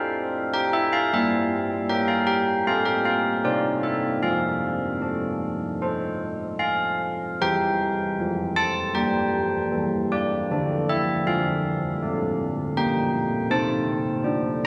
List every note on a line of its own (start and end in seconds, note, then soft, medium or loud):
0.00 1.09 A3 medium
0.00 1.10 A4 soft
0.00 1.10 C5 medium
0.00 0.53 F5 medium
0.54 0.74 G5 medium
0.73 0.94 E5 loud
0.93 1.13 F5 loud
1.13 2.62 G3 medium
1.13 1.87 E5 medium
1.89 2.62 A#4 medium
1.89 2.09 G5 medium
2.08 2.28 F5 medium
2.27 2.64 G5 loud
2.67 3.42 A3 medium
2.67 3.40 A4 soft
2.67 3.40 C5 soft
2.67 2.86 F5 medium
2.85 3.05 G5 medium
3.05 3.42 F5 medium
3.44 4.21 C4 medium
3.44 4.19 A#4 soft
3.44 4.20 C5 soft
3.44 3.82 D5 medium
3.83 4.21 E5 medium
4.23 7.37 F3 medium
4.23 6.58 F5 medium
5.02 5.81 A4 soft
5.82 7.37 A4 soft
5.82 7.37 C5 soft
6.59 7.37 F5 medium
7.41 8.03 E3 medium
7.41 10.46 C5 soft
7.41 8.53 G5 medium
8.19 8.81 F3 medium
8.56 8.94 A5 loud
8.95 9.57 G3 medium
8.95 10.07 G5 medium
9.72 10.34 E3 medium
10.12 10.85 D5 medium
10.51 11.11 D3 medium
10.51 13.48 A4 soft
10.89 11.25 E5 medium
11.27 11.87 F3 medium
11.27 12.35 F5 medium
12.03 12.62 A3 medium
12.77 13.37 A#3 medium
12.77 13.49 G5 medium
13.51 14.11 C4 medium
13.51 14.67 A4 soft
13.51 14.61 A5 medium
14.24 14.67 D4 medium